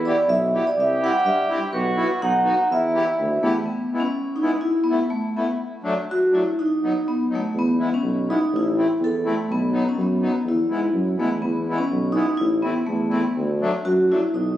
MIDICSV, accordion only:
0, 0, Header, 1, 2, 480
1, 0, Start_track
1, 0, Key_signature, 1, "minor"
1, 0, Tempo, 482315
1, 764, Time_signature, 2, 2, 24, 8
1, 3645, Key_signature, 4, "major"
1, 6528, Tempo, 486224
1, 14438, End_track
2, 0, Start_track
2, 0, Title_t, "Accordion"
2, 0, Program_c, 0, 21
2, 57, Note_on_c, 0, 59, 59
2, 59, Note_on_c, 0, 64, 43
2, 66, Note_on_c, 0, 67, 58
2, 160, Note_off_c, 0, 59, 0
2, 161, Note_off_c, 0, 64, 0
2, 165, Note_off_c, 0, 67, 0
2, 534, Note_on_c, 0, 59, 47
2, 536, Note_on_c, 0, 64, 51
2, 542, Note_on_c, 0, 67, 57
2, 637, Note_off_c, 0, 59, 0
2, 638, Note_off_c, 0, 64, 0
2, 641, Note_off_c, 0, 67, 0
2, 1005, Note_on_c, 0, 60, 59
2, 1012, Note_on_c, 0, 67, 67
2, 1017, Note_on_c, 0, 64, 48
2, 1111, Note_off_c, 0, 60, 0
2, 1115, Note_off_c, 0, 67, 0
2, 1118, Note_off_c, 0, 64, 0
2, 1489, Note_on_c, 0, 60, 47
2, 1489, Note_on_c, 0, 64, 43
2, 1496, Note_on_c, 0, 67, 60
2, 1591, Note_off_c, 0, 60, 0
2, 1591, Note_off_c, 0, 64, 0
2, 1594, Note_off_c, 0, 67, 0
2, 1958, Note_on_c, 0, 64, 45
2, 1960, Note_on_c, 0, 59, 53
2, 1967, Note_on_c, 0, 66, 63
2, 2064, Note_off_c, 0, 64, 0
2, 2065, Note_off_c, 0, 59, 0
2, 2068, Note_off_c, 0, 66, 0
2, 2428, Note_on_c, 0, 59, 45
2, 2430, Note_on_c, 0, 66, 58
2, 2433, Note_on_c, 0, 63, 45
2, 2539, Note_off_c, 0, 59, 0
2, 2540, Note_off_c, 0, 66, 0
2, 2542, Note_off_c, 0, 63, 0
2, 2927, Note_on_c, 0, 64, 51
2, 2929, Note_on_c, 0, 59, 54
2, 2936, Note_on_c, 0, 67, 64
2, 3031, Note_off_c, 0, 64, 0
2, 3032, Note_off_c, 0, 59, 0
2, 3035, Note_off_c, 0, 67, 0
2, 3407, Note_on_c, 0, 59, 51
2, 3412, Note_on_c, 0, 64, 51
2, 3417, Note_on_c, 0, 67, 65
2, 3514, Note_off_c, 0, 59, 0
2, 3517, Note_off_c, 0, 64, 0
2, 3519, Note_off_c, 0, 67, 0
2, 3906, Note_on_c, 0, 56, 53
2, 3914, Note_on_c, 0, 59, 52
2, 3915, Note_on_c, 0, 64, 60
2, 4005, Note_off_c, 0, 56, 0
2, 4009, Note_off_c, 0, 59, 0
2, 4010, Note_off_c, 0, 64, 0
2, 4396, Note_on_c, 0, 56, 54
2, 4400, Note_on_c, 0, 59, 46
2, 4400, Note_on_c, 0, 64, 63
2, 4493, Note_off_c, 0, 56, 0
2, 4495, Note_off_c, 0, 59, 0
2, 4495, Note_off_c, 0, 64, 0
2, 4873, Note_on_c, 0, 59, 58
2, 4873, Note_on_c, 0, 64, 63
2, 4874, Note_on_c, 0, 57, 62
2, 4971, Note_off_c, 0, 59, 0
2, 4971, Note_off_c, 0, 64, 0
2, 4972, Note_off_c, 0, 57, 0
2, 5329, Note_on_c, 0, 57, 42
2, 5342, Note_on_c, 0, 59, 50
2, 5342, Note_on_c, 0, 64, 57
2, 5438, Note_off_c, 0, 57, 0
2, 5444, Note_off_c, 0, 59, 0
2, 5444, Note_off_c, 0, 64, 0
2, 5796, Note_on_c, 0, 54, 65
2, 5806, Note_on_c, 0, 57, 60
2, 5812, Note_on_c, 0, 62, 70
2, 5910, Note_off_c, 0, 54, 0
2, 5916, Note_off_c, 0, 57, 0
2, 5919, Note_off_c, 0, 62, 0
2, 6288, Note_on_c, 0, 54, 52
2, 6296, Note_on_c, 0, 57, 51
2, 6296, Note_on_c, 0, 62, 56
2, 6397, Note_off_c, 0, 54, 0
2, 6400, Note_off_c, 0, 62, 0
2, 6401, Note_off_c, 0, 57, 0
2, 6797, Note_on_c, 0, 54, 56
2, 6797, Note_on_c, 0, 59, 49
2, 6803, Note_on_c, 0, 63, 56
2, 6892, Note_off_c, 0, 54, 0
2, 6893, Note_off_c, 0, 59, 0
2, 6895, Note_off_c, 0, 63, 0
2, 7252, Note_on_c, 0, 54, 49
2, 7259, Note_on_c, 0, 59, 41
2, 7263, Note_on_c, 0, 63, 51
2, 7362, Note_off_c, 0, 54, 0
2, 7365, Note_off_c, 0, 59, 0
2, 7367, Note_off_c, 0, 63, 0
2, 7741, Note_on_c, 0, 56, 51
2, 7744, Note_on_c, 0, 64, 53
2, 7755, Note_on_c, 0, 59, 50
2, 7847, Note_off_c, 0, 56, 0
2, 7848, Note_off_c, 0, 64, 0
2, 7853, Note_off_c, 0, 59, 0
2, 8230, Note_on_c, 0, 56, 45
2, 8235, Note_on_c, 0, 59, 39
2, 8236, Note_on_c, 0, 64, 52
2, 8331, Note_off_c, 0, 56, 0
2, 8334, Note_off_c, 0, 59, 0
2, 8334, Note_off_c, 0, 64, 0
2, 8710, Note_on_c, 0, 60, 51
2, 8712, Note_on_c, 0, 57, 57
2, 8718, Note_on_c, 0, 64, 57
2, 8811, Note_off_c, 0, 60, 0
2, 8812, Note_off_c, 0, 57, 0
2, 8815, Note_off_c, 0, 64, 0
2, 9176, Note_on_c, 0, 57, 52
2, 9181, Note_on_c, 0, 60, 46
2, 9183, Note_on_c, 0, 64, 65
2, 9282, Note_off_c, 0, 57, 0
2, 9285, Note_off_c, 0, 60, 0
2, 9286, Note_off_c, 0, 64, 0
2, 9649, Note_on_c, 0, 54, 47
2, 9652, Note_on_c, 0, 59, 49
2, 9659, Note_on_c, 0, 63, 61
2, 9758, Note_off_c, 0, 54, 0
2, 9759, Note_off_c, 0, 59, 0
2, 9763, Note_off_c, 0, 63, 0
2, 10140, Note_on_c, 0, 54, 47
2, 10140, Note_on_c, 0, 63, 56
2, 10142, Note_on_c, 0, 59, 43
2, 10242, Note_off_c, 0, 54, 0
2, 10242, Note_off_c, 0, 63, 0
2, 10243, Note_off_c, 0, 59, 0
2, 10612, Note_on_c, 0, 56, 46
2, 10620, Note_on_c, 0, 64, 55
2, 10621, Note_on_c, 0, 59, 52
2, 10718, Note_off_c, 0, 56, 0
2, 10722, Note_off_c, 0, 59, 0
2, 10722, Note_off_c, 0, 64, 0
2, 11086, Note_on_c, 0, 56, 48
2, 11093, Note_on_c, 0, 59, 49
2, 11099, Note_on_c, 0, 64, 58
2, 11198, Note_off_c, 0, 56, 0
2, 11202, Note_off_c, 0, 59, 0
2, 11205, Note_off_c, 0, 64, 0
2, 11587, Note_on_c, 0, 56, 56
2, 11597, Note_on_c, 0, 59, 41
2, 11598, Note_on_c, 0, 64, 60
2, 11689, Note_off_c, 0, 56, 0
2, 11695, Note_off_c, 0, 59, 0
2, 11695, Note_off_c, 0, 64, 0
2, 12038, Note_on_c, 0, 56, 47
2, 12048, Note_on_c, 0, 59, 47
2, 12054, Note_on_c, 0, 64, 55
2, 12155, Note_off_c, 0, 56, 0
2, 12159, Note_off_c, 0, 59, 0
2, 12162, Note_off_c, 0, 64, 0
2, 12513, Note_on_c, 0, 57, 51
2, 12513, Note_on_c, 0, 60, 52
2, 12520, Note_on_c, 0, 64, 55
2, 12630, Note_off_c, 0, 57, 0
2, 12630, Note_off_c, 0, 60, 0
2, 12633, Note_off_c, 0, 64, 0
2, 12980, Note_on_c, 0, 57, 49
2, 12985, Note_on_c, 0, 60, 44
2, 12985, Note_on_c, 0, 64, 62
2, 13101, Note_off_c, 0, 57, 0
2, 13103, Note_off_c, 0, 60, 0
2, 13103, Note_off_c, 0, 64, 0
2, 13480, Note_on_c, 0, 54, 71
2, 13490, Note_on_c, 0, 57, 71
2, 13495, Note_on_c, 0, 62, 81
2, 13590, Note_off_c, 0, 54, 0
2, 13594, Note_off_c, 0, 57, 0
2, 13597, Note_off_c, 0, 62, 0
2, 13967, Note_on_c, 0, 54, 50
2, 13972, Note_on_c, 0, 57, 49
2, 13981, Note_on_c, 0, 62, 60
2, 14074, Note_off_c, 0, 54, 0
2, 14077, Note_off_c, 0, 57, 0
2, 14081, Note_off_c, 0, 62, 0
2, 14438, End_track
0, 0, End_of_file